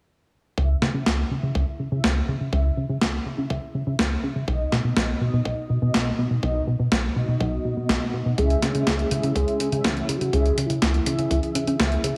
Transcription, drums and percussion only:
0.58 kick loud
0.82 snare medium
1.06 kick loud
1.06 snare loud
1.55 kick loud
2.04 kick loud
2.04 snare loud
2.53 kick loud
3.01 kick loud
3.01 snare loud
3.50 kick loud
3.99 kick loud
3.99 snare loud
4.48 kick loud
4.72 snare medium
4.97 kick loud
4.97 snare loud
5.45 kick loud
5.94 kick loud
5.94 snare loud
6.43 kick loud
6.92 kick loud
6.92 snare loud
7.41 kick loud
7.89 kick loud
7.89 snare loud
8.38 kick loud
8.38 closed hi-hat soft
8.50 closed hi-hat soft
8.62 snare medium
8.62 closed hi-hat medium
8.75 closed hi-hat soft
8.87 kick loud
8.87 snare loud
8.87 closed hi-hat soft
8.99 closed hi-hat soft
9.11 closed hi-hat medium
9.23 closed hi-hat soft
9.36 kick loud
9.36 closed hi-hat soft
9.48 closed hi-hat soft
9.60 closed hi-hat medium
9.72 closed hi-hat soft
9.84 kick loud
9.84 snare loud
9.84 closed hi-hat soft
9.97 closed hi-hat soft
10.09 closed hi-hat medium
10.21 closed hi-hat soft
10.33 kick loud
10.33 closed hi-hat medium
10.46 closed hi-hat soft
10.58 closed hi-hat medium
10.70 closed hi-hat soft
10.82 kick loud
10.82 snare loud
10.82 closed hi-hat soft
10.94 closed hi-hat soft
11.06 closed hi-hat medium
11.19 closed hi-hat soft
11.31 kick loud
11.31 closed hi-hat soft
11.43 closed hi-hat soft
11.55 closed hi-hat medium
11.67 closed hi-hat soft
11.80 kick loud
11.80 snare loud
11.80 closed hi-hat medium
11.92 closed hi-hat soft
12.04 closed hi-hat medium

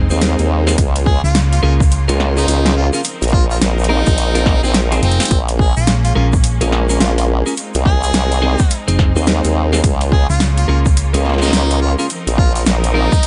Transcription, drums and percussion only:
0.10 shaker medium
0.21 snare loud
0.21 closed hi-hat medium
0.21 shaker medium
0.39 closed hi-hat soft
0.39 shaker soft
0.67 snare soft
0.67 shaker medium
0.78 kick loud
0.78 closed hi-hat medium
0.78 shaker medium
0.96 closed hi-hat medium
0.96 shaker soft
1.06 kick loud
1.25 shaker medium
1.35 snare loud
1.35 closed hi-hat medium
1.35 shaker medium
1.53 closed hi-hat medium
1.53 shaker soft
1.80 kick loud
1.80 shaker medium
1.91 closed hi-hat medium
1.91 shaker medium
2.08 closed hi-hat medium
2.08 shaker soft
2.20 snare medium
2.37 shaker medium
2.48 closed hi-hat medium
2.48 shaker medium
2.66 snare loud
2.66 closed hi-hat medium
2.66 shaker soft
2.93 shaker medium
3.04 closed hi-hat medium
3.04 shaker medium
3.22 closed hi-hat medium
3.22 closed hi-hat soft
3.22 shaker soft
3.24 closed hi-hat soft
3.28 closed hi-hat soft
3.30 closed hi-hat soft
3.32 kick loud
3.32 closed hi-hat soft
3.51 shaker medium
3.62 snare loud
3.62 closed hi-hat medium
3.62 shaker medium
3.79 shaker soft
3.84 closed hi-hat medium
4.06 kick loud
4.06 shaker medium
4.18 closed hi-hat medium
4.18 shaker medium
4.35 closed hi-hat medium
4.35 shaker soft
4.46 kick loud
4.46 snare medium
4.64 shaker medium
4.74 snare loud
4.74 closed hi-hat medium
4.74 shaker medium
4.92 closed hi-hat medium
4.92 shaker soft
5.03 closed hi-hat medium
5.12 closed hi-hat medium
5.20 snare medium
5.20 closed hi-hat medium
5.20 shaker medium
5.23 closed hi-hat medium
5.25 closed hi-hat medium
5.28 kick loud
5.28 closed hi-hat soft
5.31 closed hi-hat medium
5.31 shaker medium
5.49 closed hi-hat medium
5.49 shaker soft
5.59 kick loud
5.77 shaker medium
5.87 snare loud
5.87 closed hi-hat medium
5.87 shaker medium
6.05 closed hi-hat medium
6.05 shaker soft
6.33 kick loud
6.33 shaker medium
6.44 closed hi-hat medium
6.44 shaker medium
6.61 closed hi-hat medium
6.61 shaker soft
6.72 snare medium
6.89 shaker medium
7.00 snare loud
7.00 closed hi-hat medium
7.00 shaker medium
7.18 closed hi-hat medium
7.18 shaker soft
7.47 shaker medium
7.57 closed hi-hat medium
7.57 shaker medium
7.74 closed hi-hat medium
7.74 shaker soft
7.86 kick loud
8.03 shaker medium
8.14 snare loud
8.14 closed hi-hat medium
8.14 shaker medium
8.32 closed hi-hat medium
8.32 shaker soft
8.59 kick loud
8.59 shaker medium
8.70 closed hi-hat medium
8.70 shaker medium
8.88 closed hi-hat medium
8.88 shaker soft
8.99 kick loud
8.99 snare medium
9.16 shaker medium
9.27 snare loud
9.27 closed hi-hat medium
9.27 shaker medium
9.44 closed hi-hat medium
9.44 shaker soft
9.73 snare medium
9.73 shaker medium
9.84 kick loud
9.84 closed hi-hat medium
9.84 shaker medium
10.01 closed hi-hat medium
10.01 shaker soft
10.12 kick loud
10.30 shaker medium
10.40 snare loud
10.40 closed hi-hat medium
10.40 shaker medium
10.58 closed hi-hat medium
10.58 shaker soft
10.86 kick loud
10.86 shaker medium
10.97 closed hi-hat medium
10.97 shaker medium
11.14 closed hi-hat medium
11.14 shaker soft
11.25 snare soft
11.30 snare soft
11.34 snare soft
11.38 snare soft
11.38 shaker medium
11.43 snare soft
11.45 snare soft
11.48 snare soft
11.51 snare soft
11.53 snare loud
11.53 closed hi-hat medium
11.53 shaker medium
11.70 closed hi-hat medium
11.70 shaker soft
11.99 shaker medium
12.10 closed hi-hat medium
12.10 shaker medium
12.27 closed hi-hat medium
12.27 shaker soft
12.38 kick loud
12.56 closed hi-hat soft
12.56 shaker medium
12.66 snare loud
12.66 closed hi-hat medium
12.66 shaker medium
12.84 closed hi-hat medium
12.84 shaker soft
13.12 kick loud
13.12 shaker medium
13.23 closed hi-hat medium
13.23 shaker medium

